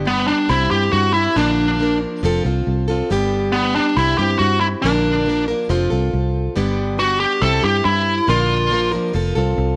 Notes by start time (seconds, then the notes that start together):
Already playing: G1
0.05 G3 B3 D4 G4
0.27 D4
0.49 C2 C3 G3 C4 E4 G4
0.71 G2 C4 E4 G4
0.92 G2 F#4
1.14 C4 E4 G4
1.36 A#1 A#2 D3 F3 A#3 D4 A#4
1.79 F3 A#3 D4 A#4
2.23 F1 F3 C4 F4 A4
2.44 C2 C4 F4 A4
2.67 C2
2.88 C4 F4 A4
3.10 G1 G2 D3 G3 B3 D4 G4
3.53 G3 B3 D4 G4
3.75 G3 B3 D4 G4
3.96 C2 C3 G3 C4 E4 G4
4.18 G2 C4 E4 G4
4.39 G2 F#4
4.60 E4
4.84 A#1 A#2 D3 F3 A#3 D4 A#4
5.26 F3 A#3 D4 A#4
5.48 F3 A#3 D4 A#4
5.69 F1 F3 C4 F4 A4
5.90 C2 C4 F4 A4
6.13 C2
6.55 G1 G2 D3 G3 B3 D4 G4
6.98 G3 B3 D4 F#4 G4
7.20 G4
7.41 C2 C3 G3 C4 E4 G4 A4
7.63 G2 C4 E4 G4
7.85 G2 E4
8.27 A#1 A#2 D3 F3 A#3 D4 F4 A#4
8.70 F3 A#3 D4 A#4
8.92 F3 A#3 D4 A#4
9.13 F1 F3 C4 F4 A4
9.35 C2 C4 F4 A4
9.58 C2